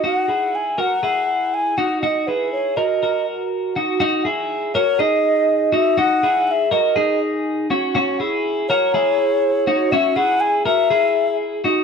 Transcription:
0.04 D#4 F#4 F#5
0.28 E4 G#4
0.55 G#5
0.78 F#4 A#4 F#5
1.03 E4 G#4
1.54 G#5
1.78 D#4 F#4 F#5
2.02 D#4 F#4 D#5
2.27 E4 G#4 B4
2.52 C#5
2.77 F#4 A#4 D#5
3.03 F#4 A#4
3.76 D#4 F#4
4.00 D#4 F#4
4.25 E4 G#4
4.74 F#4 A#4 C#5
4.99 D#4 G#4 D#5
5.73 D#4 F#4 E5
5.98 D#4 F#4 F#5
6.23 E4 G#4
6.47 E5 F#5
6.71 F#4 A#4 D#5
6.96 D#4 G#4
7.70 C#4 F#4
7.95 C#4 F#4
8.20 E4 G#4
8.69 F#4 A#4 C#5
8.94 E4 G#4
9.67 D#4 F#4
9.91 C#4 F#4 E5
10.16 E4 G#4 F#5
10.40 G#5
10.66 F#4 A#4 E5
10.90 E4 G#4
11.64 D#4 F#4

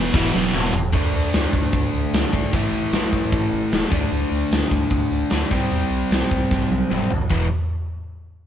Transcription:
Already playing: E1 E2 B2 E3
0.14 E1 E2 B2 E3, kick, snare
0.33 E1 E2 B2 E3, high tom
0.54 E1, mid tom
0.73 E1, floor tom
0.92 D2 D3 A3 D4, kick, crash
1.12 D2, open hi-hat
1.33 D2, snare, open hi-hat
1.53 D2, kick, open hi-hat
1.72 D2, kick, open hi-hat
1.93 D2, open hi-hat
2.13 D2, snare, open hi-hat
2.32 B1 D3 A3 D4, kick, open hi-hat
2.51 A1 A2 E3, kick, open hi-hat
2.55 A3
2.72 A1, open hi-hat
2.92 A1, snare, open hi-hat
3.13 A1, kick, open hi-hat
3.32 A1, kick, open hi-hat
3.52 A1, open hi-hat
3.72 E1, snare, open hi-hat
3.90 D2 D3 A3 D4, kick, open hi-hat
4.12 D2, open hi-hat
4.31 D2, open hi-hat
4.51 D2, snare, open hi-hat
4.71 D2, kick, open hi-hat
4.90 D2, kick, open hi-hat
5.10 D2, open hi-hat
5.30 D2 D3, snare, open hi-hat
5.34 A3 D4
5.50 C2 C3 G3, kick, open hi-hat
5.54 C4
5.71 E2, open hi-hat
5.90 C2, open hi-hat
6.11 C2, snare, open hi-hat
6.31 C2, kick, open hi-hat
6.51 C2, kick, snare
6.71 C2, high tom
6.91 G1 C3 G3 C4, mid tom
7.10 C2, floor tom
7.29 E1 E2 B2 E3, kick, crash

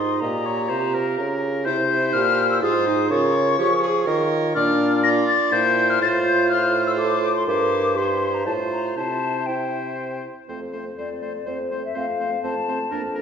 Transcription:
Already playing: G#2 D#4 D#5 C6
0.20 A#2 G4 D#5 A#5
0.46 C#5
0.68 C3 F4 C5
0.95 A#4
1.17 C#3 A#4
1.65 C3 E4 C5 G6
1.90 E4
2.13 A#2 G4 F6
2.50 E6
2.62 G#2 F4 G#4 C5 D#6
2.87 D#4
3.09 C#3 F4 A#4 C#5 C#6
3.59 F3 G4 G#4
3.82 G#4
4.07 D#3 F4 A#4 C#5
4.55 A#2 D4 F4 D5 F6
5.03 F4 D5 A#6
5.28 A6
5.52 A#2 E4 C5 G6
5.90 F6
6.00 A2 F4 C5 A6
6.26 G6
6.50 F4 C5 F6
6.87 E6
6.98 A4 D6
7.36 C6
7.47 G2 E4 A#4 C5 D6
7.96 E4 G4 C5 C6
8.34 A#5
8.46 A2 F4 C5 A5
8.72 A#5
8.96 C3 E4 C5 A5
9.46 E4 C5 G5
10.48 F2 A3 C4 C5
10.73 A3 C4 C5
10.98 F2 A3 C4 C5 D5
11.21 A3 C4 C5
11.46 F2 A3 C4 C5
11.70 A3 C4 C5
11.85 E5
11.94 F2 A3 C4 C5 F5
12.19 A3 C4 C5
12.43 F2 A3 C4 C5 A5
12.68 A3 C4 C5
12.91 F2 A#3 D4 A#4
13.15 A#3 D4 A#4

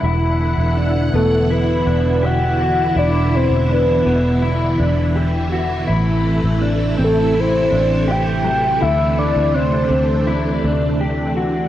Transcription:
0.03 E1 B2 D3 E3 E4 F#5
0.58 E1
0.77 D4
1.14 E1 B3 A4
1.50 E4 B4
1.87 E1 D4
2.23 G4 F#5
2.60 F#4
2.96 E1 E4 D5
3.36 C5
3.50 E1
3.69 D4 B4
4.06 E1 B3
4.42 E4
4.79 E1 D4
5.16 G4
5.52 F#4
5.87 A1 C3 A3 E4
6.44 A1
6.61 D4
6.98 A1 C4
7.04 A4
7.34 E4
7.40 C5
7.71 A1 D4
8.08 G4 G5
8.44 F#3
8.81 D2 D4 E4 E5
9.19 D5
9.36 D2
9.54 D4 C5
9.90 D2 C4
10.27 E4
10.64 D2 D4
11.01 G4
11.37 F#4

